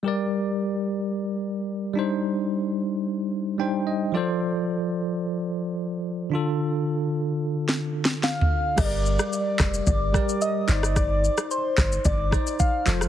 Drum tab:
CC |------------------------------------------------|------------------------------------------------|------------------------------------------------|------------------------------------------------|
SH |------------------------------------------------|------------------------------------------------|------------------------------------------------|------------------------------------------------|
CP |------------------------------------------------|------------------------------------------------|------------------------------------------------|------------------------------------------------|
SD |------------------------------------------------|------------------------------------------------|------------------------------------------------|------------------------o-------o---o-----------|
FT |------------------------------------------------|------------------------------------------------|------------------------------------------------|----------------------------------------o-------|
BD |------------------------------------------------|------------------------------------------------|------------------------------------------------|------------------------------------------------|

CC |x-----------------------------------------------|------------------------------------------------|
SH |x-----x--x--x-----x--x--x-----x--x--x-----x--x--|x-----x--x--x-----x--x--x-----x--x--x-----x--x--|
CP |------------------x-----------------------x-----|------------------x-----------------------x-----|
SD |r--------r--------r-----------r--------------r--|r--------r--------r-----------r--------------r--|
FT |------------------------------------------------|------------------------------------------------|
BD |o-----------------o-----o-----o-----------------|o-----------------o-----o-----o-----o-----------|